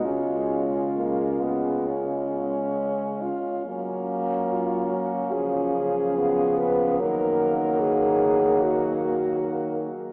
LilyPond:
<<
  \new Staff \with { instrumentName = "French horn" } { \time 4/4 \key cis \mixolydian \tempo 4 = 72 eis'2. r4 | r4 eis'8 fis'8 gis'4. b'8 | ais'4 gis'4 fis'4. r8 | }
  \new Staff \with { instrumentName = "French horn" } { \time 4/4 \key cis \mixolydian cis'4 ais8 b8 cis'4. eis'8 | cis'2. b4 | ais2.~ ais8 r8 | }
  \new Staff \with { instrumentName = "French horn" } { \clef bass \time 4/4 \key cis \mixolydian gis2.~ gis8 r8 | ais2 eis2 | fis2.~ fis8 r8 | }
  \new Staff \with { instrumentName = "French horn" } { \clef bass \time 4/4 \key cis \mixolydian cis2.~ cis8 r8 | fis2 cis2 | dis2.~ dis8 r8 | }
>>